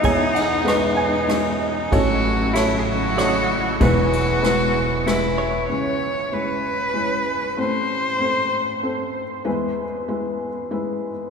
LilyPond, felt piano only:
<<
  \new Staff \with { instrumentName = "Felt piano" } { \time 3/4 \key e \major \tempo 4 = 96 << { <gis' e''>4. gis''4 r8 | r2. | r2. | r2. |
r2. | r2. | } \\ { <gis gis' cis''>8 r8 <gis gis' b'>8 r8 <gis dis' dis''>8 r8 | <a fis' cis''>8 r8 <a fis' cis''>8 r8 <a fis' cis''>8 r8 | <gis e' b'>8 r8 <gis e' b'>8 r8 <gis e' b'>8 r8 | <gis e' cis''>8 r8 <gis e' cis''>8 r8 <gis e' cis''>8 r8 |
<a c' c''>8 r8 <a c' c''>8 r8 <a c' c''>8 r8 | <gis e' b'>8 r8 <gis e' b'>8 r8 <gis e' b'>8 r8 | } >> }
  \new Staff \with { instrumentName = "Felt piano" } { \clef bass \time 3/4 \key e \major <e, e>2. | <a,, a,>2. | <e, e>2. | <cis, cis>2. |
<a,, a,>2. | <e, e>2. | }
>>